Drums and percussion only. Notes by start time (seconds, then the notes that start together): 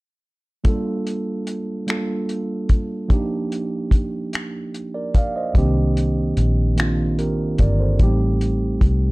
0.65 kick, closed hi-hat
1.07 closed hi-hat
1.47 closed hi-hat
1.88 finger snap, closed hi-hat
2.29 closed hi-hat
2.69 kick, closed hi-hat
3.10 kick, closed hi-hat
3.52 closed hi-hat
3.91 kick, closed hi-hat
4.33 finger snap, closed hi-hat
4.74 closed hi-hat
5.15 kick, closed hi-hat
5.55 kick, closed hi-hat
5.97 closed hi-hat
6.37 closed hi-hat
6.78 finger snap, closed hi-hat
7.19 closed hi-hat
7.58 kick, closed hi-hat
7.99 kick, closed hi-hat
8.41 closed hi-hat
8.81 kick, closed hi-hat